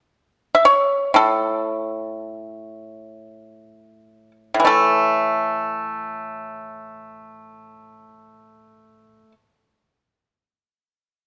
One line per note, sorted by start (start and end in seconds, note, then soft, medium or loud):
0.55 0.65 E5 soft
0.65 1.12 C#5 medium
1.14 4.53 A2 soft
1.14 4.31 A4 soft
4.54 9.23 A2 soft
4.60 9.28 E3 soft
4.65 9.33 A3 soft
4.65 9.32 A4 soft